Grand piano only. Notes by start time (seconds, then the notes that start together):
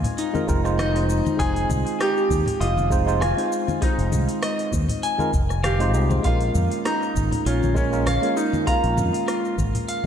Already playing: F4
0.80 D#4
1.39 G#4
2.01 G4
2.60 F4
3.21 F4
3.82 D#4
5.65 G4
6.25 F4
6.86 D#4
7.47 C#4
7.77 C#4
8.37 D#4
8.67 F4